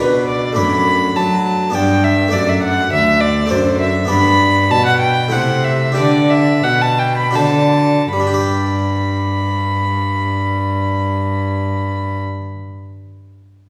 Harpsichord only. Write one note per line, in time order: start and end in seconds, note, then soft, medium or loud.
0.00 0.54 B2 soft
0.00 0.54 D4 soft
0.00 0.55 B4 soft
0.53 1.69 A3 soft
0.53 1.70 D4 soft
0.53 1.70 D5 soft
0.57 1.12 F#2 soft
1.16 1.71 F#3 medium
1.70 2.29 B3 soft
1.70 2.29 D4 soft
1.70 2.30 D5 soft
1.74 2.29 G2 soft
2.28 3.45 A3 soft
2.28 3.46 D4 soft
2.28 3.46 D5 soft
2.33 2.88 F#2 medium
2.92 3.46 D2 medium
3.46 4.06 A3 soft
3.46 4.06 D4 soft
3.46 4.07 D5 soft
3.50 4.06 F#2 medium
4.05 5.27 B3 soft
4.05 5.27 D4 soft
4.05 5.28 D5 soft
4.09 4.67 G2 medium
4.71 5.29 B2 medium
5.28 5.93 A3 soft
5.28 5.94 E4 soft
5.28 5.94 C5 soft
5.33 5.93 C3 medium
5.92 7.29 D4 soft
5.92 7.30 G4 soft
5.92 7.30 B4 soft
5.97 6.60 D3 soft
6.64 7.31 B2 medium
7.31 8.08 D4 soft
7.31 8.09 F#4 soft
7.31 8.10 C5 soft
7.35 8.09 D3 soft
8.13 12.20 G3 soft
8.20 12.27 D4 soft
8.27 12.34 G4 soft
8.34 12.41 D5 soft
8.41 12.48 G5 soft